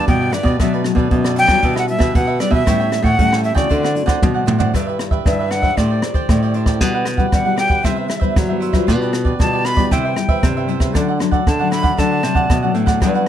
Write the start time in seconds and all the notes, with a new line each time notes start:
Already playing: E3 B3 D4 G4 B4 D5
0.08 G2 B2 G5, kick, closed hi-hat
0.21 G4 B4 D5
0.32 E3 B3 D4 E4 G4 B4 D5, cross-stick, closed hi-hat
0.43 B2 G4 B4 D5, kick
0.60 B2 F#3 A3 D4 A4 B4 D5 E5, kick, cross-stick, closed hi-hat
0.73 A4 B4 D5, closed hi-hat
0.84 F#3 A3 D4, muted cavaquinho stroke, cross-stick, closed hi-hat
0.95 B2 A4 B4 D5, kick
1.11 F#2 B2 F#3 A3 D4, kick, closed hi-hat
1.24 A4 B4 D5, cross-stick, closed hi-hat
1.35 D4 A4 B4 D5 G5, closed hi-hat
1.47 F#3 G3 D4 E4 A4 B4 D5, kick, cross-stick, closed hi-hat
1.62 B2 D4 G4 B4 E5, kick, closed hi-hat
1.75 G4 B4 E5 F#5, cross-stick
1.88 G3 D4 E4 E5, muted cavaquinho stroke, closed hi-hat
1.99 B2 G4 B4 E5, kick, cross-stick
2.15 B2 F#5, kick, closed hi-hat
2.27 G4 B4 E5
2.39 G3 D4 E4 G4 B4 D5 E5, cross-stick, closed hi-hat
2.51 B2 G4 B4 E5, kick
2.66 A2 G3 C#4 E4 A4 C#5 G5, kick, cross-stick, closed hi-hat
2.80 A4 C#5 G5, closed hi-hat
2.91 muted cavaquinho stroke, cross-stick, closed hi-hat
3.02 A2 A4 C#5 F#5 G5, kick, closed hi-hat
3.19 A2 E3 G3 C#4 E4, kick, closed hi-hat
3.32 A4 C#5 G5, cross-stick
3.43 E4 A4 C#5 E5 G5, closed hi-hat
3.54 C#3 A3 C4 F#4 A4 C#5 D5 G5, kick, cross-stick, closed hi-hat
3.70 D3 D4 C5 D5 F#5, kick, closed hi-hat
3.83 C5 D5 F#5, cross-stick, closed hi-hat
3.95 A3 C4 F#4, muted cavaquinho stroke, closed hi-hat
4.06 D3 C5 D5 F#5, kick, cross-stick, closed hi-hat
4.21 A2 B2, kick, high tom
4.34 C5 D5 F#5
4.46 A2 A3 C4 D4 F#4 C5 D5 F#5, mid tom
4.59 C5 D5 F#5, floor tom
4.73 G2 G3 D4 E4 G4 B4 E5, kick, cross-stick, closed hi-hat
4.87 G4 B4 E5, closed hi-hat
4.99 muted cavaquinho stroke, cross-stick, closed hi-hat
5.11 G4 B4 E5, kick
5.25 G2 D3 D4 E4 B4 E5, kick, cross-stick, closed hi-hat
5.39 G4 B4 E5
5.50 D4 G4 B4 E5 F#5, cross-stick, closed hi-hat
5.62 D4 G4 B4 C5 E5, kick
5.77 A2 A3 D4 G4 C5 D5, kick, cross-stick, closed hi-hat
5.90 G4 C5 D5
6.02 D4 G4 C5, muted cavaquinho stroke, cross-stick, closed hi-hat
6.14 G4 C5 D5, kick, closed hi-hat
6.29 A2 A3, kick, cross-stick, closed hi-hat
6.42 G4 C5 D5, closed hi-hat
6.54 D4 G4 C5 D5, closed hi-hat
6.66 G4 C5 D5, kick, cross-stick, closed hi-hat
6.81 B2 G3 D4 F#4 G4 B4 F#5, kick, cross-stick, closed hi-hat
6.94 G4 B4 F#5
7.05 muted cavaquinho stroke, cross-stick, closed hi-hat
7.17 G3 D4 F#4 G4 B4 F#5, kick
7.32 B2 G3 F#5, kick, cross-stick, closed hi-hat
7.45 G3 D4 F#4 G4 B4 F#5
7.56 D4 G4 B4 F#5 G5, cross-stick, closed hi-hat
7.69 G4 B4 F#5, kick
7.83 C3 G3 B3 E4 B4 C5 E5, kick, cross-stick, closed hi-hat
7.96 B4 C5 E5
8.08 muted cavaquinho stroke, cross-stick, closed hi-hat
8.20 G3 B3 E4 B4 C5 E5, kick
8.36 G2 F#3, kick, cross-stick, closed hi-hat
8.49 G3 B3 E4 B4 C5 E5
8.60 E4 B4 C5 E5, closed hi-hat
8.73 G3 D4 F4 B4 C5 E5, kick, cross-stick, closed hi-hat
8.87 B2 F4 G4 B4 D5, kick, cross-stick, closed hi-hat
9.01 G4 B4 D5, closed hi-hat
9.13 muted cavaquinho stroke, cross-stick, closed hi-hat
9.25 G4 B4 D5, kick
9.39 B2 G3 D4 F4 A5, kick, cross-stick, closed hi-hat
9.53 G4 B4 D5
9.64 F4 G4 B4 D5 B5, cross-stick, closed hi-hat
9.77 G3 B3 E4 G4 B4 D5, kick
9.91 C3 E4 B4 C5 E5 G5, kick, cross-stick, closed hi-hat
10.05 B4 C5 E5
10.16 G3 B3 E4, muted cavaquinho stroke, cross-stick, closed hi-hat
10.28 B4 C5 E5, kick, closed hi-hat
10.43 G2 C3, kick, cross-stick, closed hi-hat
10.57 B4 C5 E5, closed hi-hat
10.68 G3 B3 E4 B4 C5 E5, closed hi-hat
10.80 B4 C5 E5, kick, cross-stick, closed hi-hat
10.94 D3 F#3 A3 D4 A4 D5 F#5, kick, cross-stick, closed hi-hat
11.08 A4 D5 F#5
11.19 F#3 A3 D4, muted cavaquinho stroke, cross-stick, closed hi-hat
11.31 A4 D5 F#5, kick
11.47 A2 D3 A5, kick, cross-stick, closed hi-hat
11.59 F#3 A3 D4 A4 D5 F#5
11.71 D4 A4 D5 F#5 B5, cross-stick, closed hi-hat
11.83 A4 D5 F#5, kick
11.97 D3 F#3 A3 D4 A4 D5 F#5 A5, kick, cross-stick, closed hi-hat
12.11 A4 D5 F#5
12.23 C3 F#3 A3 D4, muted cavaquinho stroke, cross-stick, closed hi-hat
12.35 A4 D5 F#5, kick
12.50 A2 B2, kick, cross-stick, closed hi-hat
12.63 F#3 A3 D4 A4 D5 F#5
12.74 A2 D4 A4 D5 F#5, closed hi-hat
12.86 A4 D5 F#5, kick, cross-stick, closed hi-hat
13.00 G2 F#3 B3 D4 G4 B4 F#5, kick, cross-stick, closed hi-hat
13.14 G4 B4 F#5, closed hi-hat